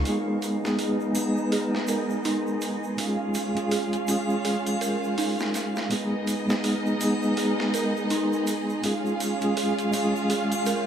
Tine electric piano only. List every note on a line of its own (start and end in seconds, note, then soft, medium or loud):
0.04 0.58 G#3 medium
0.04 0.58 B3 medium
0.04 0.59 D#4 medium
0.04 0.59 G#4 medium
0.63 1.11 G#3 medium
0.63 1.12 B3 medium
0.63 1.12 D#4 medium
0.63 1.13 G#4 medium
1.13 2.94 G#3 medium
1.13 2.94 B3 medium
1.13 2.95 D#4 medium
1.18 2.96 G#4 medium
2.97 3.51 G#3 medium
2.97 3.51 C#4 medium
2.97 3.52 F4 medium
2.97 3.52 G#4 medium
3.55 4.04 G#3 medium
3.55 4.04 C#4 medium
3.55 4.05 F4 medium
3.55 4.05 G#4 medium
4.05 5.86 G#3 medium
4.05 5.87 C#4 medium
4.05 5.88 F4 medium
4.11 5.89 G#4 medium
5.90 6.43 G#3 medium
5.90 6.44 B3 medium
5.90 6.44 D#4 medium
5.90 6.45 G#4 medium
6.48 6.96 G#3 medium
6.48 6.97 B3 medium
6.48 6.97 D#4 medium
6.48 6.98 G#4 medium
6.98 8.79 G#3 medium
6.98 8.79 B3 medium
6.98 8.80 D#4 medium
7.03 8.81 G#4 medium
8.83 9.36 G#3 medium
8.83 9.37 C#4 medium
8.83 9.37 F4 medium
8.83 9.38 G#4 medium
9.41 9.89 G#3 medium
9.41 9.90 C#4 medium
9.41 9.90 F4 medium
9.41 9.91 G#4 medium
9.91 10.87 G#3 medium
9.91 10.87 C#4 medium
9.91 10.87 F4 medium
9.97 10.87 G#4 medium